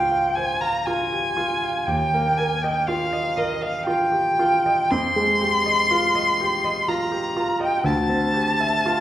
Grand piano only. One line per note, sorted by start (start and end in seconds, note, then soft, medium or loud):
0.00 1.82 C#2 soft
0.00 1.89 C#4 soft
0.00 0.26 F4 soft
0.00 0.37 C5 soft
0.00 0.11 F5 soft
0.11 0.51 F5 soft
0.37 0.76 C5 soft
0.62 1.01 F5 soft
0.87 1.26 F4 soft
1.12 1.37 G4 soft
1.37 1.77 F4 soft
1.63 1.87 F5 soft
1.87 4.87 D#2 soft
2.14 2.53 A#3 soft
2.39 2.78 A#4 soft
2.64 3.03 D#5 soft
2.88 3.28 F4 soft
3.13 3.52 D#5 soft
3.38 3.77 A#4 soft
3.63 4.02 D#5 soft
3.87 4.28 F4 soft
4.12 4.38 G4 soft
4.39 4.81 F4 soft
4.66 4.91 D#5 soft
4.91 7.82 F2 medium
5.16 5.56 G#3 soft
5.41 5.81 G4 soft
5.66 6.06 D#5 soft
5.91 6.30 F4 soft
6.15 6.54 D#5 soft
6.41 6.79 G4 soft
6.64 7.03 D#5 soft
6.88 7.27 F4 soft
7.12 7.36 G4 soft
7.37 7.76 F4 soft
7.60 7.86 D#5 soft
7.84 9.00 D2 medium
8.09 8.51 C4 soft
8.34 8.76 G4 soft
8.61 9.00 E5 soft
8.86 9.00 F4 soft